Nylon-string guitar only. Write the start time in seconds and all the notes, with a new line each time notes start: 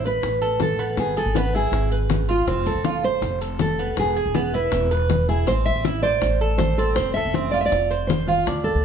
0.07 B4
0.62 A4
0.99 G#4
1.18 A4
1.37 B4
1.56 G#4
2.30 F4
2.66 A4
3.04 C5
3.61 A4
3.99 G#4
4.55 B4
5.29 G#4
5.48 C5
5.65 E5
6.03 D5
6.58 C5
6.78 A4
6.96 C5
7.14 E5
7.51 D5
7.61 E5
7.66 D5
8.07 C5
8.27 F4
8.64 A4